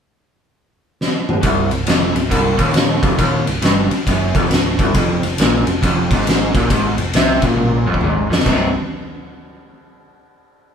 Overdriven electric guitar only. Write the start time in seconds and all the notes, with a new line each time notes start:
1.43 C2
1.72 C2
1.87 F2
2.16 C2
2.31 C2
2.58 D#2
3.03 F2
3.18 D#2
3.47 C2
3.62 G2
3.91 muted overdriven electric guitar stroke
4.09 F#2
4.36 F2
4.53 C2
4.80 C2
4.95 F2
5.24 F2
5.40 A#2
5.67 F2
5.83 F2
6.12 G#2
6.54 A#2
6.70 G#2
6.99 F2
7.15 C3
7.43 A#2
7.87 F2
8.03 G#2
8.30 F2
8.45 C2 G2 C3